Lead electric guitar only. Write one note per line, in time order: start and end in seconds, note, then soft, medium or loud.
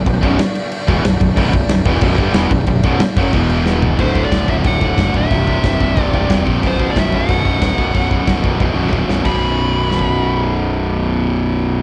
4.00 4.24 C5 medium
4.25 4.49 D5 medium
4.49 4.54 E5 medium
4.66 5.16 F#5 loud
5.18 6.03 E5 loud
6.03 6.43 D5 loud
6.67 6.89 C5 medium
6.91 6.97 D5 medium
6.99 7.14 E5 medium
7.16 8.91 F#5 medium
9.26 11.82 B5 medium